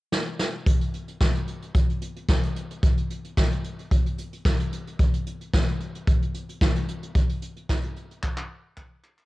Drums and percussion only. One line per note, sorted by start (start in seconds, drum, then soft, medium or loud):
0.12 snare medium
0.39 snare medium
0.66 kick loud
0.66 closed hi-hat loud
0.81 closed hi-hat medium
0.94 closed hi-hat medium
1.08 closed hi-hat soft
1.21 kick medium
1.21 snare loud
1.35 closed hi-hat soft
1.48 closed hi-hat medium
1.62 closed hi-hat soft
1.75 kick loud
1.75 closed hi-hat loud
1.90 closed hi-hat soft
2.02 closed hi-hat medium
2.16 closed hi-hat soft
2.29 kick loud
2.29 snare loud
2.43 closed hi-hat medium
2.56 closed hi-hat medium
2.71 closed hi-hat medium
2.83 kick loud
2.83 closed hi-hat loud
2.97 closed hi-hat medium
3.10 closed hi-hat medium
3.24 closed hi-hat medium
3.37 kick loud
3.37 snare loud
3.51 closed hi-hat medium
3.64 closed hi-hat medium
3.79 closed hi-hat soft
3.91 kick loud
3.91 closed hi-hat medium
4.06 closed hi-hat soft
4.18 closed hi-hat medium
4.33 closed hi-hat medium
4.45 kick loud
4.45 snare loud
4.60 closed hi-hat medium
4.72 closed hi-hat medium
4.87 closed hi-hat soft
4.99 kick loud
4.99 closed hi-hat medium
5.14 closed hi-hat medium
5.27 closed hi-hat medium
5.41 closed hi-hat soft
5.53 kick loud
5.53 snare loud
5.68 closed hi-hat medium
5.80 closed hi-hat medium
5.95 closed hi-hat soft
6.07 kick loud
6.07 closed hi-hat medium
6.22 closed hi-hat soft
6.34 closed hi-hat medium
6.49 closed hi-hat soft
6.61 kick loud
6.61 snare loud
6.75 closed hi-hat medium
6.88 closed hi-hat medium
7.03 closed hi-hat medium
7.15 kick loud
7.15 closed hi-hat loud
7.29 closed hi-hat medium
7.42 closed hi-hat medium
7.56 closed hi-hat soft
7.69 kick loud
7.69 snare loud
7.83 closed hi-hat medium
7.96 closed hi-hat medium
8.11 closed hi-hat soft
8.23 kick loud
8.23 clap medium
8.38 clap soft
8.77 kick loud
8.77 clap medium
9.04 clap medium
9.18 clap medium